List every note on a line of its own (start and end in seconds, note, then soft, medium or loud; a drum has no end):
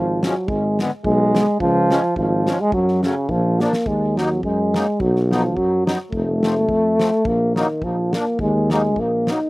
0.00 0.28 G#1 medium
0.00 0.24 F3 medium
0.23 0.35 F3 soft
0.23 0.49 F#3 medium
0.23 0.35 G#3 medium
0.23 0.35 C#4 medium
0.23 snare medium
0.23 hi-hat pedal soft
0.48 0.85 G#1 medium
0.48 0.79 G#3 medium
0.48 kick medium
0.79 0.91 D3 medium
0.79 0.91 G#3 medium
0.79 0.91 B3 medium
0.79 snare medium
0.79 hi-hat pedal soft
1.04 1.41 B1 loud
1.04 1.57 G#3 loud
1.04 kick medium
1.35 1.46 D3 medium
1.35 1.47 G#3 medium
1.35 1.47 B3 medium
1.35 snare medium
1.35 hi-hat pedal soft
1.60 1.97 C#2 loud
1.60 2.13 F3 loud
1.60 kick medium
1.90 2.02 F3 medium
1.90 2.02 G#3 medium
1.90 2.02 C#4 medium
1.90 snare medium
1.90 hi-hat pedal soft
2.16 2.52 G#1 loud
2.16 2.62 F3 medium
2.16 kick medium
2.46 2.58 F3 medium
2.46 2.58 G#3 soft
2.46 2.59 C#4 medium
2.46 snare medium
2.46 hi-hat pedal medium
2.61 2.73 G#3 loud
2.72 3.09 F#2 medium
2.72 3.02 F#3 loud
2.72 kick medium
2.88 snare soft
3.03 3.31 C#3 medium
3.03 3.15 F#3 medium
3.03 3.15 A3 medium
3.03 3.15 C#4 medium
3.03 snare medium
3.03 hi-hat pedal soft
3.29 3.66 A#1 loud
3.29 3.62 F3 medium
3.29 kick medium
3.60 3.72 F3 medium
3.60 3.72 A#3 medium
3.60 3.89 A#3 medium
3.60 3.72 D4 medium
3.60 snare medium
3.60 hi-hat pedal medium
3.73 snare medium
3.86 4.45 D#2 medium
3.86 4.19 G#3 medium
3.86 kick medium
4.17 4.29 F#3 medium
4.17 4.44 F#3 medium
4.17 4.29 A#3 medium
4.17 4.29 D#4 medium
4.17 snare medium
4.43 4.80 F#2 medium
4.43 5.02 G#3 medium
4.43 kick medium
4.74 4.86 F#3 medium
4.74 4.86 A#3 soft
4.74 4.86 D#4 medium
4.74 snare medium
5.00 5.58 B1 loud
5.00 5.23 F#3 medium
5.00 kick medium
5.16 snare soft
5.23 5.31 F#3 soft
5.30 5.57 F3 medium
5.30 5.43 F#3 medium
5.30 5.43 B3 soft
5.30 5.43 D#4 medium
5.30 snare medium
5.56 5.93 F#2 medium
5.56 5.85 F#3 medium
5.56 kick medium
5.86 5.98 F#3 medium
5.86 5.98 B3 soft
5.86 5.99 D#4 medium
5.86 snare medium
6.11 6.70 F1 medium
6.11 7.28 A3 loud
6.11 kick medium
6.42 6.54 F3 medium
6.42 6.55 A3 medium
6.42 6.55 C4 medium
6.42 snare medium
6.68 7.05 F2 medium
6.68 kick medium
6.98 7.10 F3 medium
6.98 7.11 A3 medium
6.98 7.11 C4 medium
6.98 snare medium
7.25 7.62 A#1 medium
7.25 7.56 A#3 loud
7.25 kick medium
7.55 7.85 D#3 medium
7.55 7.67 F#3 medium
7.55 7.67 A#3 medium
7.55 7.68 D#4 medium
7.55 snare medium
7.82 8.19 A#1 medium
7.82 8.16 F3 medium
7.82 kick medium
8.13 8.25 F3 soft
8.13 8.25 A#3 soft
8.13 8.40 A#3 medium
8.13 8.25 D4 medium
8.13 snare medium
8.39 8.97 D#2 loud
8.39 8.69 G#3 medium
8.39 kick medium
8.70 8.82 F#3 medium
8.70 9.01 G#3 medium
8.70 8.82 A#3 medium
8.70 8.82 D#4 medium
8.70 snare medium
8.96 9.33 A#1 medium
8.96 9.33 A#3 medium
8.96 kick soft
9.27 9.39 F#3 soft
9.27 9.40 A#3 soft
9.27 9.40 D#4 medium
9.27 snare medium
9.31 9.50 D#4 medium